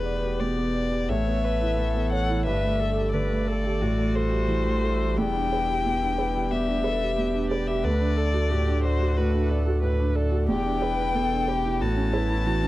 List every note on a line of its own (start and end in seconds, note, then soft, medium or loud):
0.00 1.11 E1 medium
0.00 1.05 E2 medium
0.00 0.16 B3 soft
0.00 2.41 B3 soft
0.00 1.05 G4 soft
0.00 0.42 B4 medium
0.00 1.05 D5 soft
0.06 0.33 D5 soft
0.23 0.50 G4 soft
0.40 0.68 B2 soft
0.40 1.10 D5 medium
0.57 0.85 B3 soft
0.74 1.02 D5 medium
0.92 1.09 G4 soft
1.09 2.47 A1 medium
1.09 2.42 A2 medium
1.09 3.81 A4 soft
1.09 1.46 C#5 medium
1.09 2.46 C#5 medium
1.09 2.12 E5 medium
1.26 1.54 B3 soft
1.44 1.80 B4 medium
1.44 1.71 C#5 soft
1.61 1.89 E4 soft
1.78 2.05 E3 soft
1.78 2.45 A4 medium
1.95 2.22 B3 soft
2.12 2.39 C#5 soft
2.12 2.45 F#5 medium
2.29 2.46 E4 soft
2.46 3.82 G1 medium
2.46 3.77 G2 medium
2.46 5.18 A3 soft
2.46 2.81 B4 medium
2.46 3.80 D5 soft
2.46 3.12 E5 medium
2.63 2.90 A3 soft
2.79 3.15 A4 medium
2.79 3.07 A4 soft
2.98 3.24 G4 soft
3.13 3.40 D3 soft
3.13 3.49 B4 medium
3.13 4.16 D5 medium
3.31 3.57 A3 soft
3.47 3.83 A4 medium
3.47 3.74 A4 soft
3.64 3.81 G4 soft
3.81 5.20 A1 medium
3.81 5.14 A2 medium
3.81 7.85 G3 soft
3.81 5.19 F#4 medium
3.81 5.18 E5 soft
3.98 4.24 A3 soft
4.14 4.41 A4 soft
4.14 5.19 C5 medium
4.31 4.58 G4 soft
4.48 4.75 E3 soft
4.65 4.93 A3 soft
4.82 5.10 A4 soft
5.01 5.18 G4 soft
5.17 7.86 E1 medium
5.17 6.48 E2 medium
5.17 7.85 B3 soft
5.17 6.50 E4 medium
5.17 10.48 D5 medium
5.17 6.53 G5 medium
5.35 5.62 D4 soft
5.52 5.79 B4 soft
5.69 5.95 G4 soft
5.86 6.12 B2 soft
6.02 6.29 D4 soft
6.18 6.45 B4 soft
6.35 6.61 G4 soft
6.51 6.78 B2 soft
6.51 6.85 G4 medium
6.51 7.50 E5 medium
6.67 6.94 D4 soft
6.83 7.16 A4 medium
6.83 7.11 B4 soft
7.01 7.28 G4 medium
7.17 7.45 B2 soft
7.17 7.85 G4 medium
7.34 7.61 D4 soft
7.50 7.78 B4 medium
7.50 7.69 D5 medium
7.67 7.85 G4 soft
7.67 7.85 E5 medium
7.83 9.13 D2 medium
7.83 10.51 D2 medium
7.83 10.48 A3 soft
7.83 8.18 B4 medium
7.83 8.83 D5 medium
7.83 10.48 F#5 soft
8.01 8.28 D4 medium
8.17 8.52 A4 medium
8.17 8.45 D5 soft
8.34 8.61 F#4 medium
8.50 8.78 A2 soft
8.50 8.86 G4 medium
8.68 8.94 D4 medium
8.84 9.16 F#4 medium
8.84 9.18 C5 medium
8.84 9.11 D5 soft
9.01 9.27 F#4 medium
9.17 9.44 A2 soft
9.17 9.51 F#4 medium
9.17 9.50 B4 medium
9.34 9.60 D4 soft
9.50 9.82 A4 medium
9.50 9.77 D5 medium
9.67 9.93 F#4 medium
9.83 10.09 A2 soft
9.83 10.17 B4 medium
9.99 10.26 D4 soft
10.15 10.48 A4 medium
10.15 10.42 D5 medium
10.32 10.49 F#4 soft
10.48 11.83 E1 medium
10.48 11.77 E2 medium
10.48 12.68 B3 medium
10.48 12.68 E4 medium
10.48 10.84 G4 medium
10.48 11.77 D5 medium
10.48 11.83 G5 loud
10.65 10.92 D4 soft
10.82 11.17 B4 medium
10.82 11.08 B4 medium
10.98 11.25 E4 soft
11.15 11.41 B2 medium
11.15 11.49 A4 medium
11.32 11.58 D4 soft
11.48 11.82 G4 medium
11.48 11.74 B4 soft
11.64 11.81 E4 medium
11.81 12.68 A1 medium
11.81 12.68 A2 medium
11.81 12.15 F#4 medium
11.81 12.68 C#5 medium
11.81 12.68 A5 medium
11.97 12.23 C#4 soft
12.13 12.47 E4 medium
12.13 12.40 B4 medium
12.30 12.56 E4 medium
12.46 12.68 E3 medium
12.46 12.68 F#4 medium
12.63 12.68 C#4 soft